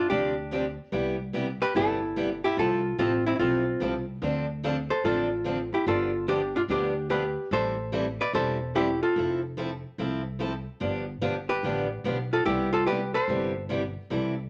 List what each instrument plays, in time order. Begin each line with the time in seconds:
0.10 upright bass D2, steel-string acoustic guitar C3 F3 C4 D4 G4, hollow-body jazz guitar D4 G4
0.51 steel-string acoustic guitar C3 F3 C4 D4 G4
0.92 upright bass C2, steel-string acoustic guitar C3 G3 B3 E4 G4
1.33 steel-string acoustic guitar C3 G3 B3 E4 G4
1.62 hollow-body jazz guitar G4 B4
1.75 upright bass G1, steel-string acoustic guitar C3 G3 B3 E4 G4, hollow-body jazz guitar E4 A4
2.16 steel-string acoustic guitar C3 G3 B3 E4 G4
2.44 hollow-body jazz guitar E4 G4
2.57 upright bass C2, steel-string acoustic guitar C3 F3 C4 E4 A4, hollow-body jazz guitar F4 A4
2.98 upright bass A1, steel-string acoustic guitar C3 F3 C4 E4 A4, hollow-body jazz guitar C4 F4
3.26 hollow-body jazz guitar C4 E4
3.36 upright bass B1, steel-string acoustic guitar C3, hollow-body jazz guitar E4 F4
3.40 steel-string acoustic guitar F3 C4 E4 A4, hollow-body jazz guitar C4
3.80 upright bass C2, steel-string acoustic guitar C3 F3 C4 E4 A4
4.22 upright bass D2, steel-string acoustic guitar D3 F3 C4 D4 A4
4.63 steel-string acoustic guitar D3 F3 C4 D4 A4
4.90 hollow-body jazz guitar A4 C5
5.04 upright bass A1, steel-string acoustic guitar D3 F3 C4 D4 A4, hollow-body jazz guitar F4 A4
5.44 steel-string acoustic guitar D3 F3 C4 D4 A4
5.74 hollow-body jazz guitar E4 G4
5.86 upright bass G1, steel-string acoustic guitar D3 F3 B3 D4 G4, hollow-body jazz guitar F4 A4
6.28 steel-string acoustic guitar D3 F3 B3 D4 G4, hollow-body jazz guitar D4 G4
6.56 hollow-body jazz guitar D4 F4
6.68 upright bass D2, steel-string acoustic guitar D3 F3 B3 D4 G4, hollow-body jazz guitar D4 G4
7.10 steel-string acoustic guitar D3 F3 B3 D4 G4, hollow-body jazz guitar G4 B4
7.51 upright bass A1, steel-string acoustic guitar E3 G3 C4 E4 A4, hollow-body jazz guitar A4 C5
7.92 steel-string acoustic guitar E3 G3 C4 E4 A4
8.21 hollow-body jazz guitar B4 D5
8.33 upright bass E1, steel-string acoustic guitar E3 G3 C4 E4 A4, hollow-body jazz guitar A4 C5
8.75 steel-string acoustic guitar E3 G3 C4 E4 A4, hollow-body jazz guitar E4 G4
9.03 hollow-body jazz guitar F4 A4
9.16 upright bass F1, steel-string acoustic guitar F3 C4 E4 A4
9.57 steel-string acoustic guitar F3 C4 E4 A4
9.98 upright bass C2, steel-string acoustic guitar F3 C4 E4 A4
10.39 steel-string acoustic guitar F3 C4 E4 A4
10.80 upright bass G1, steel-string acoustic guitar D3 F3 B3 D4 G4
11.21 upright bass G1, steel-string acoustic guitar D3 F3 B3 D4 G4
11.49 hollow-body jazz guitar G4 B4
11.63 upright bass A1, steel-string acoustic guitar D3 F3 B3 D4 G4
12.04 upright bass B1, steel-string acoustic guitar D3 F3 B3 D4 G4
12.33 hollow-body jazz guitar F4 A4
12.45 upright bass C2, steel-string acoustic guitar C3 G3 B3 E4 G4, hollow-body jazz guitar E4 G4
12.73 hollow-body jazz guitar F4 A4
12.86 steel-string acoustic guitar C3 G3 B3 E4 G4, hollow-body jazz guitar G4 B4
13.14 hollow-body jazz guitar A4 C5
13.28 upright bass G1, steel-string acoustic guitar C3 G3 B3 E4 G4
13.68 steel-string acoustic guitar C3 G3 B3 E4 G4, hollow-body jazz guitar B4
14.10 upright bass C2, steel-string acoustic guitar C3 E3 G3 C4 E4 A4